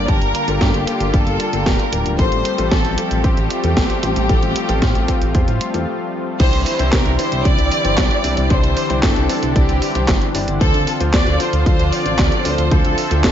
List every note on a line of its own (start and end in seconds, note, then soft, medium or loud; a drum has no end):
0.00 2.15 D3 medium
0.00 6.36 G3 medium
0.00 2.15 A#3 medium
0.00 2.15 A5 medium
0.08 0.20 G1 loud
0.08 0.45 A#3 medium
0.08 0.45 D4 medium
0.08 2.17 F4 medium
0.08 0.45 G4 medium
0.08 0.61 A#4 loud
0.08 0.45 A5 loud
0.08 kick loud
0.08 closed hi-hat medium
0.21 0.33 G1 medium
0.21 closed hi-hat soft
0.35 closed hi-hat medium
0.48 0.59 G1 medium
0.48 0.84 A#3 medium
0.48 0.84 D4 medium
0.48 0.84 G4 medium
0.48 0.84 A4 loud
0.48 closed hi-hat soft
0.61 0.73 G2 loud
0.61 1.14 G4 loud
0.61 kick loud
0.61 snare loud
0.61 closed hi-hat medium
0.74 0.86 G1 medium
0.74 closed hi-hat soft
0.87 1.10 A#3 medium
0.87 1.10 D4 medium
0.87 1.10 G4 medium
0.87 1.10 A4 medium
0.87 closed hi-hat medium
1.00 1.12 G1 medium
1.00 closed hi-hat soft
1.14 1.25 G1 medium
1.14 1.50 A#3 medium
1.14 1.50 D4 medium
1.14 1.50 G4 medium
1.14 1.66 A4 loud
1.14 1.50 A4 medium
1.14 kick loud
1.14 closed hi-hat medium
1.27 1.38 G1 medium
1.27 closed hi-hat soft
1.40 closed hi-hat medium
1.53 1.65 G1 medium
1.53 1.89 A#3 medium
1.53 1.89 D4 medium
1.53 1.89 G4 medium
1.53 1.89 A4 medium
1.53 closed hi-hat soft
1.66 1.78 D1 loud
1.66 2.06 A#4 loud
1.66 kick loud
1.66 snare loud
1.66 closed hi-hat medium
1.79 closed hi-hat soft
1.92 2.04 D1 medium
1.92 2.16 A#3 medium
1.92 2.16 D4 medium
1.92 2.16 G4 medium
1.92 2.16 A#4 medium
1.92 closed hi-hat medium
2.06 2.17 D1 medium
2.06 closed hi-hat soft
2.19 2.30 A1 loud
2.19 6.36 F3 medium
2.19 6.36 A3 medium
2.19 6.36 C4 medium
2.19 2.55 C4 medium
2.19 2.55 F4 medium
2.19 4.27 G4 medium
2.19 2.55 G4 medium
2.19 2.55 A4 medium
2.19 2.68 C5 loud
2.19 kick loud
2.19 closed hi-hat medium
2.32 2.44 A1 medium
2.32 closed hi-hat soft
2.45 closed hi-hat medium
2.58 2.70 A1 medium
2.58 2.95 C4 loud
2.58 2.95 F4 medium
2.58 2.95 G4 medium
2.58 2.95 A4 loud
2.58 closed hi-hat soft
2.71 2.83 A1 loud
2.71 3.24 A4 loud
2.71 kick loud
2.71 snare loud
2.71 closed hi-hat medium
2.85 2.96 A1 medium
2.85 closed hi-hat soft
2.98 3.21 C4 medium
2.98 3.21 F4 medium
2.98 3.21 G4 medium
2.98 3.21 A4 medium
2.98 closed hi-hat medium
3.11 3.23 A1 medium
3.11 closed hi-hat soft
3.24 3.36 A1 loud
3.24 3.60 C4 medium
3.24 3.60 F4 medium
3.24 3.60 G4 medium
3.24 5.87 G4 loud
3.24 3.60 C5 medium
3.24 kick loud
3.24 closed hi-hat medium
3.37 3.49 A1 medium
3.37 closed hi-hat soft
3.50 closed hi-hat medium
3.64 3.75 E2 medium
3.64 4.00 C4 medium
3.64 4.00 F4 medium
3.64 4.00 G4 medium
3.64 4.00 A4 loud
3.64 closed hi-hat soft
3.77 3.88 A1 loud
3.77 kick loud
3.77 snare loud
3.77 closed hi-hat medium
3.90 closed hi-hat soft
4.03 4.15 A1 loud
4.03 4.26 C4 medium
4.03 4.26 F4 medium
4.03 4.26 G4 medium
4.03 4.26 C5 medium
4.03 closed hi-hat loud
4.16 4.28 A1 medium
4.16 closed hi-hat soft
4.29 4.41 A1 loud
4.29 4.66 C4 medium
4.29 4.66 F4 medium
4.29 6.38 F4 medium
4.29 4.66 G4 medium
4.29 4.66 A4 loud
4.29 kick loud
4.29 closed hi-hat medium
4.43 4.54 A1 medium
4.43 closed hi-hat soft
4.56 closed hi-hat loud
4.69 4.81 A1 medium
4.69 5.05 C4 loud
4.69 5.05 F4 medium
4.69 5.05 G4 medium
4.69 5.05 A4 loud
4.69 closed hi-hat soft
4.82 4.94 A2 loud
4.82 kick loud
4.82 snare loud
4.82 closed hi-hat medium
4.95 5.07 A1 medium
4.95 closed hi-hat soft
5.08 5.31 C4 medium
5.08 5.31 F4 medium
5.08 5.31 G4 medium
5.08 5.31 A4 medium
5.08 kick medium
5.08 closed hi-hat loud
5.21 5.33 A1 medium
5.21 closed hi-hat soft
5.35 5.46 E2 loud
5.35 5.71 C4 medium
5.35 5.71 F4 medium
5.35 5.71 G4 medium
5.35 5.71 C5 medium
5.35 kick loud
5.35 closed hi-hat medium
5.48 5.59 A2 medium
5.48 closed hi-hat soft
5.61 closed hi-hat medium
5.74 5.86 E2 medium
5.74 5.87 C4 medium
5.74 5.87 F4 medium
5.74 5.87 G4 medium
5.74 5.87 A4 medium
5.74 closed hi-hat soft
6.40 6.52 C2 loud
6.40 13.32 D3 medium
6.40 10.57 E3 medium
6.40 10.57 G3 medium
6.40 10.57 C4 medium
6.40 6.76 D4 medium
6.40 6.76 E4 medium
6.40 8.48 E4 medium
6.40 6.76 G4 medium
6.40 6.64 C5 loud
6.40 6.76 C5 loud
6.40 kick loud
6.40 closed hi-hat medium
6.40 crash loud
6.53 6.65 C2 medium
6.53 closed hi-hat soft
6.66 6.91 C5 loud
6.66 open hi-hat loud
6.79 6.91 C2 medium
6.79 7.16 D4 loud
6.79 7.16 E4 medium
6.79 7.16 G4 medium
6.79 7.16 C5 loud
6.79 closed hi-hat soft
6.92 7.04 C2 loud
6.92 7.19 A#4 loud
6.92 kick loud
6.92 snare loud
6.92 clap loud
6.92 closed hi-hat medium
7.06 7.17 C2 medium
7.06 closed hi-hat soft
7.19 7.42 D4 medium
7.19 7.42 E4 medium
7.19 7.42 G4 medium
7.19 7.42 C5 loud
7.19 7.43 C5 loud
7.19 open hi-hat loud
7.32 7.44 C2 medium
7.32 closed hi-hat soft
7.45 7.57 C2 loud
7.45 7.81 D4 medium
7.45 7.81 E4 medium
7.45 7.81 G4 medium
7.45 8.50 D5 loud
7.45 7.81 D5 medium
7.45 kick loud
7.45 closed hi-hat medium
7.58 7.70 C2 medium
7.58 closed hi-hat soft
7.72 open hi-hat loud
7.85 7.96 G1 medium
7.85 8.21 D4 medium
7.85 8.21 E4 medium
7.85 8.21 G4 medium
7.85 8.21 C5 medium
7.85 closed hi-hat soft
7.98 8.09 C2 loud
7.98 kick loud
7.98 snare loud
7.98 clap loud
7.98 closed hi-hat medium
8.11 closed hi-hat soft
8.24 8.36 C2 loud
8.24 8.47 D4 medium
8.24 8.47 E4 medium
8.24 8.47 G4 medium
8.24 8.47 D5 medium
8.24 open hi-hat loud
8.37 8.49 C2 medium
8.37 closed hi-hat soft
8.50 8.62 C2 loud
8.50 8.87 D4 medium
8.50 10.59 D4 medium
8.50 8.87 E4 medium
8.50 8.87 G4 medium
8.50 8.87 C5 loud
8.50 9.03 C5 loud
8.50 kick loud
8.50 closed hi-hat medium
8.64 8.75 C2 medium
8.64 closed hi-hat soft
8.77 open hi-hat loud
8.90 9.02 C2 medium
8.90 9.26 D4 loud
8.90 9.26 E4 medium
8.90 9.26 G4 medium
8.90 9.26 C5 loud
8.90 closed hi-hat soft
9.03 9.15 G1 loud
9.03 9.52 A4 medium
9.03 kick loud
9.03 snare loud
9.03 clap loud
9.03 closed hi-hat medium
9.16 9.28 C2 medium
9.16 closed hi-hat soft
9.29 9.53 D4 medium
9.29 9.53 E4 medium
9.29 9.53 G4 medium
9.29 9.53 C5 medium
9.29 open hi-hat loud
9.43 9.54 C2 medium
9.43 closed hi-hat soft
9.56 9.67 C2 loud
9.56 9.92 D4 medium
9.56 9.92 E4 medium
9.56 9.92 G4 medium
9.56 10.35 G4 medium
9.56 9.92 D5 medium
9.56 kick loud
9.56 closed hi-hat medium
9.69 9.80 C2 medium
9.69 closed hi-hat soft
9.82 open hi-hat loud
9.95 10.07 C2 medium
9.95 10.32 D4 medium
9.95 10.32 E4 medium
9.95 10.32 G4 medium
9.95 10.32 C5 medium
9.95 closed hi-hat soft
10.08 10.20 G1 loud
10.08 kick loud
10.08 snare loud
10.08 clap loud
10.08 closed hi-hat medium
10.22 closed hi-hat soft
10.34 10.46 G1 loud
10.34 10.58 D4 medium
10.34 10.58 E4 medium
10.34 10.58 G4 medium
10.34 10.58 D5 medium
10.34 open hi-hat loud
10.48 10.59 G1 medium
10.48 closed hi-hat soft
10.61 10.73 D2 loud
10.61 13.32 F3 medium
10.61 13.32 C4 medium
10.61 10.97 D4 medium
10.61 10.97 F4 medium
10.61 12.69 F4 medium
10.61 10.85 A4 loud
10.61 10.97 A4 medium
10.61 10.97 C5 loud
10.61 13.32 A5 medium
10.61 kick loud
10.61 closed hi-hat medium
10.74 10.86 D2 medium
10.74 closed hi-hat soft
10.87 10.99 A4 medium
10.87 open hi-hat loud
11.00 11.12 D2 medium
11.00 11.37 D4 loud
11.00 11.37 F4 medium
11.00 11.37 A4 medium
11.00 11.37 C5 loud
11.00 closed hi-hat soft
11.14 11.25 D2 loud
11.14 11.38 D5 loud
11.14 kick loud
11.14 snare loud
11.14 clap loud
11.14 closed hi-hat medium
11.27 11.38 D2 medium
11.27 closed hi-hat soft
11.40 11.63 D4 medium
11.40 11.63 F4 medium
11.40 11.63 A4 medium
11.40 11.63 C5 medium
11.40 11.65 C5 loud
11.40 open hi-hat loud
11.53 11.65 D2 medium
11.53 closed hi-hat soft
11.66 11.78 D2 loud
11.66 12.03 D4 medium
11.66 12.03 F4 medium
11.66 12.03 A4 medium
11.66 11.91 C5 loud
11.66 12.03 D5 medium
11.66 kick loud
11.66 closed hi-hat medium
11.79 11.91 D2 medium
11.79 closed hi-hat soft
11.92 12.45 D5 loud
11.92 open hi-hat loud
12.06 12.17 A1 medium
12.06 12.42 D4 medium
12.06 12.42 F4 medium
12.06 12.42 A4 medium
12.06 12.42 C5 loud
12.06 closed hi-hat soft
12.19 12.30 D2 loud
12.19 kick loud
12.19 snare loud
12.19 clap loud
12.19 closed hi-hat medium
12.32 closed hi-hat soft
12.45 12.57 D2 medium
12.45 12.68 D4 medium
12.45 12.68 F4 medium
12.45 12.68 A4 medium
12.45 12.71 C5 loud
12.45 12.68 D5 medium
12.45 open hi-hat loud
12.58 12.70 D2 medium
12.58 closed hi-hat soft
12.71 12.83 D2 loud
12.71 13.08 D4 medium
12.71 13.08 F4 medium
12.71 13.08 A4 medium
12.71 13.23 A4 loud
12.71 13.08 C5 loud
12.71 13.32 E5 medium
12.71 kick loud
12.71 closed hi-hat medium
12.85 12.96 D2 medium
12.85 closed hi-hat soft
12.98 open hi-hat loud
13.11 13.23 D2 medium
13.11 13.32 D4 loud
13.11 13.32 F4 medium
13.11 13.32 A4 medium
13.11 13.32 C5 loud
13.11 closed hi-hat soft
13.24 13.32 D1 loud
13.24 13.32 A4 medium
13.24 kick loud
13.24 snare loud
13.24 clap loud
13.24 closed hi-hat medium